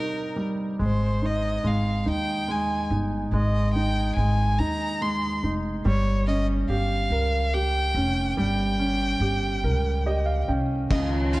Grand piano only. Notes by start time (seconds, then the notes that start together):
Already playing: C3 G3 D#4 G4
0.36 G3
0.79 G#3
1.22 D#4
1.64 G#3
2.06 D#4
2.48 G#3
2.91 D#4
3.33 G#3
3.76 D#4
4.18 G#3
4.60 D#4
5.01 G#3
5.43 D#4
5.85 G3
6.27 C#4
6.70 G4
7.12 A#4
7.54 G4
7.96 C#4
8.37 G3
8.79 C#4
9.22 G4
9.64 A#4
10.06 G4 D#5
10.26 F5
10.48 C#4 G5
10.91 C#3
11.34 F4